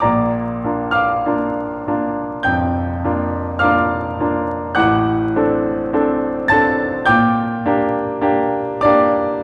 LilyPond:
\new Staff \with { instrumentName = "Grand piano" } { \time 4/4 \key bes \major \tempo 4 = 52 << { <d'' bes'' d'''>8. <f'' d''' f'''>4~ <f'' d''' f'''>16 <g'' g'''>4 <f'' d''' f'''>4 | <fis'' d''' fis'''>4. <a'' a'''>8 <g'' d''' g'''>4. <d'' d'''>8 | } \\ { <bes,, bes,>8 <bes d' f'>8 <bes d' f'>8 <bes d' f'>8 f,8 <bes d' f'>8 <bes d' f'>8 <bes d' f'>8 | <a,, a,>8 <c' d' a'>8 <c' d' a'>8 <c' d' a'>8 bes,8 <bes d' g'>8 <bes d' g'>8 <bes d' g'>8 | } >> }